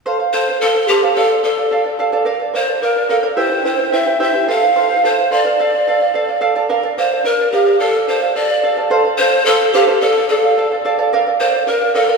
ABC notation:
X:1
M:2/4
L:1/16
Q:1/4=108
K:F
V:1 name="Charango"
[Acf] [cf] [Acf] [cf] [Acf] [cf] [Acf] [Acf] | [Adf] [df] [Adf] [df] [Adf] [df] [Adf] [Adf] | [Bdf] [df] [Bdf] [df] [Bdf] [df] [Bdf] [Bdf] | [EGceg] [Ecg] [Eceg] [Ecg] [Eceg] [Ecg] [EGceg] [EGceg] |
[Acf] [cf] [Acf] [cf] [Acf] [cf] [Acf] [Acf] | [Adf] [df] [Adf] [df] [Adf] [df] [Adf] [Adf] | [Bdf] [df] [Bdf] [df] [Bdf] [df] [Bdf] [Bdf] | [Adf] [df] [Adf] [df] [Adf] [df] [Adf] [Adf] |
[Acf] [cf] [Acf] [cf] [Acf] [cf] [Acf] [Acf] | [Adf] [df] [Adf] [df] [Adf] [df] [Adf] [Adf] | [Bdf] [df] [Bdf] [df] [Bdf] [df] [Bdf] [Bdf] |]
V:2 name="Pan flute"
z2 c2 A2 G2 | A2 A4 z2 | z2 c2 B2 A2 | c2 c2 e2 e2 |
f4 c2 d2- | d6 z2 | z2 c2 B2 G2 | A2 c2 d3 z |
z2 c2 A2 G2 | A2 A4 z2 | z2 c2 B2 A2 |]